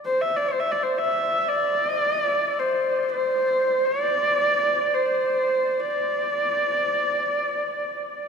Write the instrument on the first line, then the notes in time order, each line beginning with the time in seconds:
horsehead fiddle
0.05 C5
0.21 E5
0.36 D5
0.48 C5
0.60 E5
0.71 D5
0.83 C5
0.98 E5
1.48 D5
2.59 C5
3.12 C5
3.85 D5
4.94 C5
5.80 D5